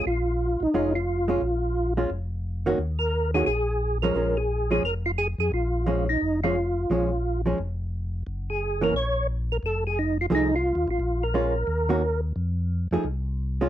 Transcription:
X:1
M:4/4
L:1/8
Q:"Swing" 1/4=175
K:Bbm
V:1 name="Tonewheel organ"
F3 E2 F3- | F3 z4 z | z B2 A A3 B- | B A2 A B F A A |
F3 E2 F3- | F3 z4 z | z A2 B d2 z B | =A ^G E F E F2 F- |
F B6 z | z8 |]
V:2 name="Hollow-body jazz guitar"
z4 [A,DF] z2 [A,DF] | z3 [A,DF] z3 [E,B,DG] | z3 [E,B,DG] z3 [F,A,D] | [F,A,D] z2 [F,A,D] z4 |
z2 [F,A,D] z2 [F,A,D] z2 | [F,A,D] z2 [F,A,D] z4 | z3 [_F,B,D] z4 | z4 [F,=A,E^G] z3 |
z2 [A,DF] z2 [E,B,DG] z2 | z3 [F,=A,E^G] z3 [^G,DF] |]
V:3 name="Tonewheel organ" clef=bass
B,,,3 B,,, F,,,4 | B,,,4 F,,,4 | E,,4 B,,,4 | B,,,4 F,,,3 F,, |
B,,,4 F,,,4 | B,,,4 F,,,4 | G,,,4 B,,,4 | F,,,4 C,,2- (3C,, E,, =A,,, |
B,,,4 E,,4 | F,,3 F,, C,,4 |]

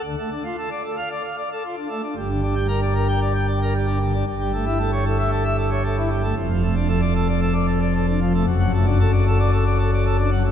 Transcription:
X:1
M:4/4
L:1/16
Q:1/4=114
K:Dm
V:1 name="Pipe organ"
D, A, D F A d A f d f d A F D A, D | G,, D, D G B d B g d g d B G D D, D | G,, G, A, E A ^c A e A e A c A E G, A, | F,, F, A, D A d A d A d A d A D F, A, |
[K:D] F,, F, A, D A d A d A d A d A D F, A, |]
V:2 name="Pipe organ" clef=bass
D,, z12 z3 | G,,,16 | G,,,16 | F,,,16 |
[K:D] F,,,16 |]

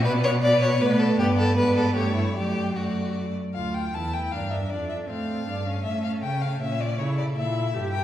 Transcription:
X:1
M:3/4
L:1/8
Q:1/4=157
K:D
V:1 name="Violin"
d2 d2 d2 | d2 d2 c2 | d2 d3 z | [K:Dm] f g a g f e |
d e f4 | e f g f e d | ^c d e3 g |]
V:2 name="Violin"
B c d c B A | G A B A G E | G2 F2 z2 | [K:Dm] A4 B2 |
A6 | A4 ^c2 | A4 A B |]
V:3 name="Viola"
B,2 B,2 B,2 | B,2 B,2 A,2 | A,2 A,3 z | [K:Dm] F2 E2 D2 |
D2 C2 D ^C- | ^C4 C2 | E2 E2 G2 |]
V:4 name="Cello" clef=bass
B,,4 A,,2 | G,,2 ^G,,2 =G,,2 | F,,4- F,, z | [K:Dm] D,,2 E,,2 G,,2 |
F,,2 A,,2 G,,2 | A,,2 ^C,2 B,,2 | ^C,2 B,,2 G,,2 |]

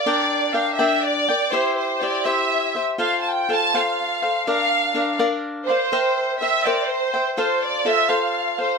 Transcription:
X:1
M:6/8
L:1/16
Q:3/8=82
K:F
V:1 name="Violin section"
d4 f2 e2 d4 | c2 c2 d2 e4- e/2 z3/2 | f3/2 a/2 g2 a2 f6 | f6 z4 c2- |
c4 e2 d2 c4 | c2 d2 e2 f4 c2 |]
V:2 name="Cavaquinho"
[DBdg]4 [DBdg]2 [DBdg]4 [Bdg]2 | [EGce]4 [EGce]2 [EGce]4 [Gce]2 | [FAcf]4 [FAcf]2 [FAcf]4 [Acf]2 | [DBdf]4 [DBdf]2 [DBdf]4 [Bdf]2 |
[Bceg]4 [Bceg]2 [Bceg]4 [ceg]2 | [FAcf]4 [FAcf]2 [FAcf]4 [Acf]2 |]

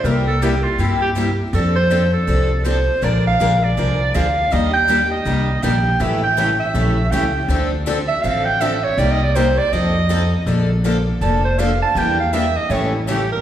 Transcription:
X:1
M:4/4
L:1/16
Q:"Swing" 1/4=161
K:Bblyd
V:1 name="Clarinet"
B2 A2 G2 F2 E2 G2 z4 | A2 c4 A6 c4 | d2 f4 d6 f4 | _e2 g4 e6 g4 |
e2 g4 e6 g4 | z6 e2 f2 g2 e2 ^c2 | (3d2 _e2 d2 c2 d2 e8 | z8 a2 c2 f2 a2 |
g2 f2 e2 _e2 ^c2 =E2 G2 B2 |]
V:2 name="Steel-string acoustic guitar"
[C,G,B,EG]2 z2 [C,G,B,EG] z3 [C,G,B,EG]2 z2 [C,G,B,EG] z3 | [F,CDA]2 z2 [F,CDA] z3 [F,CDA]2 z2 [F,CDA] z3 | [D,F,B,D_A]2 z2 [D,F,B,DA] z3 [D,F,B,DA]2 z2 [D,F,B,DA] z3 | [_E,G,B,DG]2 z2 [E,G,B,DG] z3 [E,G,B,DG]2 z2 [E,G,B,DG] z3 |
[E,G,^CEA]2 z2 [E,G,CEA] z3 [E,G,CEA]2 z2 [E,G,CEA] z3 | [D,F,CDA]2 z2 [D,F,CDA] z3 [D,F,CDA]2 z2 [D,F,CDA] z3 | [C,G,B,_EG]2 z2 [C,G,B,EG] z3 [F,CEA]2 z2 [F,CEA] z3 | [D,F,B,DA]2 z2 [D,F,B,DA] z3 [D,F,B,DA]2 z2 [D,F,B,DA] z3 |
[E,G,DEB]2 z2 [E,G,DEB] z3 [E,G,^CEA]2 z2 [E,G,CEA] z3 |]
V:3 name="Steel-string acoustic guitar"
[C,G,B,EG]2 z2 [C,G,B,EG] z3 [C,G,B,EG]2 z2 [C,G,B,EG] z3 | [F,CDA]2 z2 [F,CDA] z3 [F,CDA]2 z2 [F,CDA] z3 | [F,_A,DFB]2 z2 [F,A,DFB] z3 [F,A,DFB]2 z2 [F,A,DFB] z3 | [_E,G,B,DG]2 z2 [E,G,B,DG] z3 [E,G,B,DG]2 z2 [E,G,B,DG] z3 |
[^C,E,A,^CG]2 z2 [C,E,A,CG] z3 [C,E,A,CG]2 z2 [C,E,A,CG] z3 | [D,F,CDA]2 z2 [D,F,CDA] z3 [D,F,CDA]2 z2 [D,F,CDA] z3 | [C,G,B,_EG]2 z2 [C,G,B,EG] z3 [F,CEA]2 z2 [F,CEA] z3 | [D,F,B,DA]2 z2 [D,F,B,DA] z3 [D,F,B,DA]2 z2 [D,F,B,DA] z3 |
[E,B,DG]2 z2 [E,B,DG] z3 [^C,E,A,^CG]2 z2 [C,E,A,CG] z3 |]
V:4 name="Upright bass" clef=bass
C,,8 G,,8 | F,,8 C,,8 | B,,,4 B,,,4 C,,4 D,,4 | _E,,8 C,,4 B,,,4 |
A,,,8 B,,,4 ^C,,4 | D,,8 A,,,8 | C,,8 F,,8 | B,,,8 F,,,8 |
E,,8 A,,,8 |]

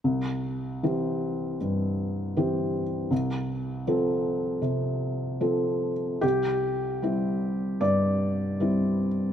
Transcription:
X:1
M:4/4
L:1/8
Q:1/4=77
K:C
V:1 name="Felt piano"
z8 | z8 | G4 d4 |]
V:2 name="Felt piano"
C,,2 [E,CG]2 G,,2 [E,CG]2 | C,,2 [F,CA]2 C,2 [F,CA]2 | C,,2 [G,CE]2 G,,2 [G,CE]2 |]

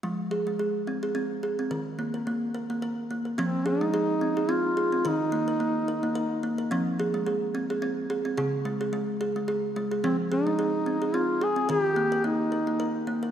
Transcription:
X:1
M:3/4
L:1/16
Q:"Swing 16ths" 1/4=108
K:Fm
V:1 name="Duduk"
z12 | z12 | C2 E6 F4 | E8- E2 z2 |
z12 | z12 | C2 E6 F2 A2 | G4 E6 z2 |]
V:2 name="Kalimba"
A,2 A A, A2 C A C2 A C | B2 B, B B,2 B B, B2 B, B | C2 A A, A2 C A C2 A C | B2 B, B B,2 B B, B2 B, B |
C2 A A, A2 C A C2 A C | A2 A, A A,2 A A, A2 A, A | C2 A A, A2 C A C2 A C | B2 B, B B,2 B B, B2 B, B |]
V:3 name="Kalimba" clef=bass
F,12 | E,12 | F,8 z4 | E,8 z4 |
F,8 z4 | D,8 z4 | F,8 z4 | E,8 z4 |]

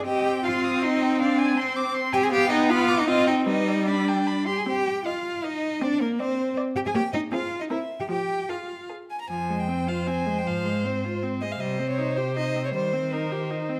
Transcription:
X:1
M:3/4
L:1/16
Q:1/4=157
K:Cm
V:1 name="Violin"
e2 g2 c'2 e'2 c'2 g2 | f2 a2 c'2 d'2 c'2 a2 | f2 g2 =b2 d'2 e2 g2 | =B2 d2 =b2 g2 b2 c'2 |
z4 e4 e4 | z4 d4 d4 | [K:Fm] d4 A4 B4 | z4 A4 A4 |
c12- | c12 | c12- | c12 |]
V:2 name="Violin"
g4 f4 e4 | d4 c4 z2 g a | g2 e2 f3 e f2 e2 | e4 d6 g a |
g4 f4 e4 | d2 B2 c4 z2 g a | [K:Fm] g2 e2 f3 e =e3 g | g4 f4 z2 a b |
a3 g3 f2 a3 g | f4 c4 z2 e f | e3 d3 c2 e3 d | c4 B4 z4 |]
V:3 name="Cello"
G4 F4 E4 | D4 C4 z2 G A | G2 E2 F3 E F2 E2 | E4 D6 G A |
G4 F4 E4 | D2 B,2 C4 z2 G A | [K:Fm] G2 E2 F3 E =E3 G | G4 F4 z4 |
F,,12 | A,,12 | C,12 | E,12 |]
V:4 name="Viola"
C12- | C12 | =B,8 C4 | G,8- G,2 z2 |
C4 z8 | C4 z8 | [K:Fm] B,4 C4 C4 | F,4 z8 |
F,2 A,2 C2 F2 C2 A,2 | F,2 A,2 C2 F2 C2 A,2 | G,2 C2 E2 G2 E2 C2 | G,2 C2 E2 G2 E2 C2 |]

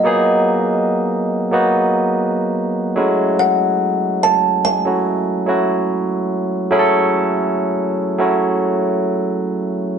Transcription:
X:1
M:4/4
L:1/16
Q:"Swing 16ths" 1/4=72
K:F#dor
V:1 name="Kalimba"
d8- d3 z4 z | f4 a2 g8- g2- | g12 z4 |]
V:2 name="Tine electric piano"
[F,^A,B,DG]6- [F,A,B,DG] [F,A,B,DF]6- [F,A,B,DF] [F,G,=A,CE]2- | [F,G,A,CE]6 z [F,A,CEF]3 [F,A,CEF]6 | [F,A,CEGA]6- [F,A,CEGA] [F,A,CEF]6- [F,A,CEF] z2 |]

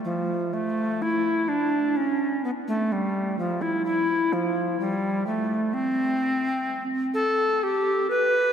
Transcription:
X:1
M:3/4
L:1/16
Q:1/4=63
K:F
V:1 name="Recorder"
F,2 A,2 E2 D2 _D2 =B, A, | G,2 F, E E2 F,2 G,2 A,2 | [K:Am] C6 A2 G2 B2 |]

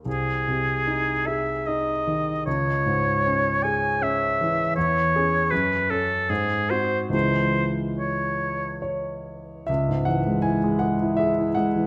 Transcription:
X:1
M:3/4
L:1/16
Q:1/4=76
K:C#m
V:1 name="Oboe"
G6 e2 d4 | c6 g2 e4 | c4 B2 A2 G2 ^B2 | ^B2 z2 c4 z4 |
z12 |]
V:2 name="Grand piano"
z12 | z12 | z12 | z8 c4 |
e2 f2 g2 f2 e2 f2 |]
V:3 name="Grand piano" clef=bass
^B,,,2 ^B,,2 D2 G2 D2 D,2 | C,,2 G,,2 C2 G2 C2 E,2 | E,,2 [CG]2 F,,2 [CA]2 G,,2 [^B,F]2 | [C,,E,G,E]12 |
C,, G,, E, G, E G, G E G E G, E, |]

